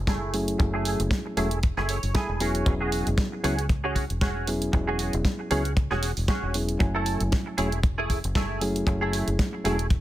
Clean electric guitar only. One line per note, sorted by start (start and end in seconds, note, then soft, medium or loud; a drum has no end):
0.07 0.34 A3 medium
0.07 0.34 E4 medium
0.07 0.34 G#4 medium
0.59 muted clean electric guitar stroke loud
0.74 1.00 A3 medium
0.74 1.00 E4 medium
0.74 1.00 G#4 medium
1.26 muted clean electric guitar stroke soft
1.37 1.57 A3 medium
1.37 1.57 E4 medium
1.37 1.57 G#4 loud
1.77 1.96 A3 loud
1.77 1.96 E4 loud
1.77 1.96 G#4 loud
1.89 2.13 C#5 medium
2.14 2.41 A3 medium
2.14 2.41 E4 medium
2.14 2.40 G#4 medium
2.14 2.63 G#5 medium
2.40 2.72 C#4 medium
2.40 2.72 F#4 medium
2.40 2.72 G#4 medium
2.80 3.06 C#4 medium
2.80 3.07 F#4 medium
2.80 3.07 G#4 medium
3.32 muted clean electric guitar stroke soft
3.44 3.64 C#4 medium
3.44 3.64 F#4 medium
3.44 3.64 G#4 loud
3.84 4.03 C#4 medium
3.84 4.03 F#4 medium
3.84 4.03 G#4 loud
4.21 4.47 C#4 medium
4.21 4.48 F#4 medium
4.21 4.47 G#4 medium
4.73 muted clean electric guitar stroke loud
4.87 5.13 C#4 medium
4.87 5.13 F#4 medium
4.87 5.13 G#4 medium
5.39 muted clean electric guitar stroke soft
5.51 5.71 C#4 medium
5.51 5.71 F#4 medium
5.51 5.71 G#4 medium
5.91 6.10 C#4 medium
5.91 6.10 F#4 loud
5.91 6.10 G#4 loud
6.28 6.54 C#4 medium
6.28 6.54 F#4 medium
6.28 6.54 G#4 medium
6.80 muted clean electric guitar stroke loud
6.95 7.20 A3 medium
6.95 7.20 E4 medium
6.95 7.21 A4 medium
7.46 muted clean electric guitar stroke soft
7.58 7.78 A3 medium
7.58 7.78 E4 medium
7.58 7.78 G#4 medium
7.98 8.17 A3 medium
7.98 8.17 E4 loud
7.98 8.17 G#4 loud
8.35 8.61 A3 medium
8.35 8.61 E4 medium
8.35 8.62 G#4 medium
8.87 muted clean electric guitar stroke loud
9.01 9.27 A3 medium
9.01 9.27 E4 medium
9.01 9.27 G#4 medium
9.53 muted clean electric guitar stroke soft
9.65 9.85 A3 medium
9.65 9.85 E4 medium
9.65 9.85 G#4 loud